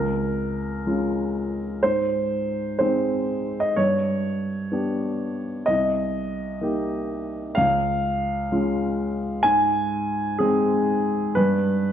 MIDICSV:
0, 0, Header, 1, 2, 480
1, 0, Start_track
1, 0, Key_signature, -4, "major"
1, 0, Tempo, 650759
1, 1346, Time_signature, 6, 3, 24, 8
1, 2772, Tempo, 632244
1, 7092, Tempo, 644468
1, 8936, End_track
2, 0, Start_track
2, 0, Title_t, "Upright piano"
2, 0, Program_c, 0, 0
2, 0, Note_on_c, 0, 37, 46
2, 0, Note_on_c, 0, 70, 73
2, 23, Control_c, 0, 64, 127
2, 616, Note_off_c, 0, 37, 0
2, 638, Note_on_c, 0, 56, 31
2, 643, Note_on_c, 0, 61, 35
2, 643, Note_on_c, 0, 65, 37
2, 1325, Note_off_c, 0, 56, 0
2, 1328, Note_off_c, 0, 61, 0
2, 1328, Note_off_c, 0, 65, 0
2, 1347, Note_on_c, 0, 72, 71
2, 1352, Note_off_c, 0, 70, 0
2, 1357, Note_on_c, 0, 44, 44
2, 1360, Control_c, 0, 64, 0
2, 1467, Control_c, 0, 64, 127
2, 2041, Note_off_c, 0, 44, 0
2, 2044, Note_off_c, 0, 72, 0
2, 2055, Note_on_c, 0, 72, 68
2, 2066, Note_on_c, 0, 56, 35
2, 2071, Note_on_c, 0, 60, 36
2, 2074, Note_on_c, 0, 63, 36
2, 2654, Note_off_c, 0, 72, 0
2, 2656, Note_on_c, 0, 75, 64
2, 2748, Note_off_c, 0, 56, 0
2, 2750, Note_off_c, 0, 60, 0
2, 2752, Note_off_c, 0, 63, 0
2, 2773, Note_off_c, 0, 75, 0
2, 2777, Note_on_c, 0, 73, 78
2, 2783, Note_on_c, 0, 43, 45
2, 2788, Control_c, 0, 64, 0
2, 2918, Control_c, 0, 64, 127
2, 3475, Note_off_c, 0, 43, 0
2, 3500, Note_on_c, 0, 59, 34
2, 3504, Note_on_c, 0, 62, 36
2, 3508, Note_on_c, 0, 67, 38
2, 4188, Note_off_c, 0, 59, 0
2, 4191, Note_off_c, 0, 62, 0
2, 4192, Note_off_c, 0, 67, 0
2, 4215, Note_on_c, 0, 75, 75
2, 4217, Note_off_c, 0, 73, 0
2, 4229, Control_c, 0, 64, 0
2, 4229, Note_on_c, 0, 36, 47
2, 4360, Control_c, 0, 64, 127
2, 4924, Note_off_c, 0, 36, 0
2, 4938, Note_off_c, 0, 75, 0
2, 4940, Note_on_c, 0, 58, 40
2, 4945, Note_on_c, 0, 63, 39
2, 4951, Note_on_c, 0, 67, 43
2, 5628, Note_off_c, 0, 58, 0
2, 5631, Note_off_c, 0, 63, 0
2, 5634, Note_off_c, 0, 67, 0
2, 5649, Note_on_c, 0, 77, 89
2, 5668, Note_on_c, 0, 37, 51
2, 5670, Control_c, 0, 64, 0
2, 5798, Control_c, 0, 64, 127
2, 6364, Note_off_c, 0, 37, 0
2, 6385, Note_on_c, 0, 61, 41
2, 6386, Note_on_c, 0, 56, 39
2, 6391, Note_on_c, 0, 65, 46
2, 7065, Note_off_c, 0, 56, 0
2, 7065, Note_off_c, 0, 61, 0
2, 7068, Note_off_c, 0, 65, 0
2, 7076, Note_on_c, 0, 80, 94
2, 7088, Note_off_c, 0, 77, 0
2, 7088, Note_on_c, 0, 44, 58
2, 7105, Control_c, 0, 64, 0
2, 7240, Control_c, 0, 64, 127
2, 7781, Note_off_c, 0, 44, 0
2, 7790, Note_on_c, 0, 68, 73
2, 7797, Note_off_c, 0, 80, 0
2, 7802, Note_on_c, 0, 56, 43
2, 7803, Note_on_c, 0, 60, 39
2, 7807, Note_on_c, 0, 63, 46
2, 8488, Note_off_c, 0, 56, 0
2, 8488, Note_off_c, 0, 60, 0
2, 8490, Note_off_c, 0, 63, 0
2, 8509, Note_on_c, 0, 71, 80
2, 8511, Note_off_c, 0, 68, 0
2, 8522, Note_on_c, 0, 43, 53
2, 8530, Control_c, 0, 64, 0
2, 8644, Control_c, 0, 64, 127
2, 8936, Note_off_c, 0, 43, 0
2, 8936, Note_off_c, 0, 71, 0
2, 8936, End_track
0, 0, End_of_file